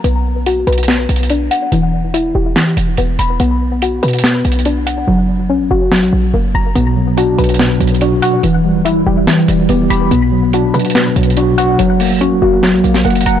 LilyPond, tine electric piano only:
\new Staff \with { instrumentName = "Tine electric piano" } { \clef bass \time 4/4 \key b \minor \tempo 4 = 143 r1 | r1 | r1 | r1 |
b,8 fis8 d'8 fis8 b,8 fis8 fis'8 fis'8 | e8 g8 e'8 g8 e8 g8 g'8 g'8 | b,8 fis8 d'8 fis8 b,8 fis8 fis'8 fis'8 | fis8 ais8 fis'8 ais8 fis8 ais8 fis''8 fis''8 | }